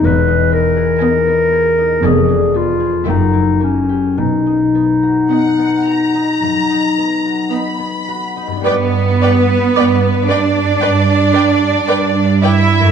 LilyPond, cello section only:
\new Staff \with { instrumentName = "Cello section" } { \clef bass \time 4/4 \key b \major \tempo 4 = 55 e,4 r4 f,4 fis,4 | b,4 r4 fis,4 r4 | \key g \major b4. d'2 e'8 | }